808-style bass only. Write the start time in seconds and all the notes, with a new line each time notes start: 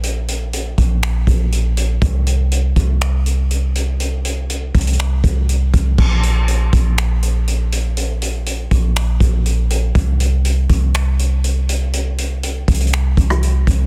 Already playing: A#1
0.78 A#1
1.27 A#1
2.02 C2
2.76 C2
4.75 C2
5.24 C2
5.74 C2
5.98 A#1
6.73 A#1
8.71 A#1
9.20 A#1
9.95 C2
10.69 C2
12.68 C2
13.17 C2
13.67 C2